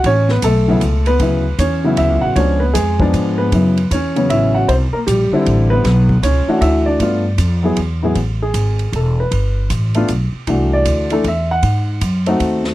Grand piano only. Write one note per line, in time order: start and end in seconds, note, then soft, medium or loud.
0.06 0.29 C#4 medium
0.06 0.28 C#5 loud
0.31 0.43 B3 medium
0.31 0.43 B4 medium
0.44 1.04 A3 medium
0.44 1.09 A4 medium
0.68 0.80 C#3 medium
0.68 0.81 F#3 medium
0.68 0.81 B3 medium
0.68 0.81 E4 medium
1.07 1.20 B3 medium
1.07 1.56 B4 medium
1.20 1.42 C#3 medium
1.20 1.43 F#3 medium
1.20 1.43 B3 medium
1.20 1.43 E4 medium
1.59 1.96 C#4 medium
1.59 1.95 C#5 medium
1.84 2.34 C#3 medium
1.84 2.34 F#3 medium
1.84 2.35 B3 medium
1.84 1.98 E4 medium
1.97 2.22 E4 medium
1.97 2.23 E5 medium
2.22 2.36 F#4 medium
2.22 2.36 F#5 medium
2.36 2.59 F3 medium
2.36 2.59 G#3 soft
2.36 2.60 B3 medium
2.36 2.60 C#4 medium
2.36 2.60 D4 medium
2.36 2.62 C#5 loud
2.60 2.75 B3 medium
2.60 2.75 B4 medium
2.74 2.99 G#3 medium
2.74 3.40 G#4 medium
3.00 3.50 F3 medium
3.00 3.50 G#3 medium
3.00 3.39 B3 medium
3.00 3.51 D4 medium
3.38 3.53 B3 medium
3.38 3.93 B4 medium
3.53 3.75 C#3 medium
3.53 3.75 F#3 medium
3.53 3.76 B3 medium
3.53 3.76 E4 medium
3.92 4.16 C#4 medium
3.92 4.28 C#5 medium
4.16 4.66 C#3 medium
4.16 4.66 F#3 medium
4.16 4.67 B3 medium
4.16 4.67 C#4 medium
4.30 4.54 E4 medium
4.30 4.55 E5 medium
4.55 4.69 F#4 medium
4.55 4.69 F#5 medium
4.68 4.76 C4 medium
4.68 4.74 C5 medium
4.93 5.00 A#3 medium
4.93 4.98 A#4 medium
5.07 5.32 G3 medium
5.07 5.66 G4 medium
5.33 5.82 D3 medium
5.33 5.83 G3 medium
5.33 5.83 C4 medium
5.33 5.83 E4 medium
5.70 6.21 B3 medium
5.70 6.25 B4 loud
6.23 6.60 C#4 medium
6.23 6.63 C#5 medium
6.48 6.98 E3 medium
6.48 6.98 A3 medium
6.48 6.86 D4 medium
6.48 6.99 F#4 medium
6.61 6.86 E4 medium
6.61 6.85 E5 medium
6.86 7.00 D4 medium
6.86 7.73 D5 medium
7.00 7.23 A3 medium
7.00 7.23 B3 medium
7.00 7.23 D4 medium
7.00 7.24 F4 medium
7.63 7.76 F#3 medium
7.63 7.76 B3 medium
7.63 7.77 E4 medium
7.63 7.77 G#4 medium
8.03 8.15 A2 medium
8.03 8.15 F#3 medium
8.03 8.16 B3 medium
8.03 8.16 E4 medium
8.03 8.16 G#4 medium
8.42 8.91 G#4 medium
8.96 9.19 A4 medium
9.20 9.68 B4 medium
9.95 10.08 A3 medium
9.95 10.08 B3 medium
9.95 10.08 D4 medium
9.95 10.09 F4 medium
10.47 11.06 E3 medium
10.47 11.06 A3 medium
10.47 11.07 D4 medium
10.47 11.07 F#4 medium
10.73 11.22 D5 medium
11.11 11.24 E3 medium
11.11 11.24 A3 medium
11.11 11.24 D4 medium
11.11 11.24 A4 medium
11.28 11.51 E5 medium
11.51 11.99 F#5 loud
12.27 12.74 A3 medium
12.27 12.74 C4 medium
12.27 12.74 D#4 medium
12.27 12.74 F#4 medium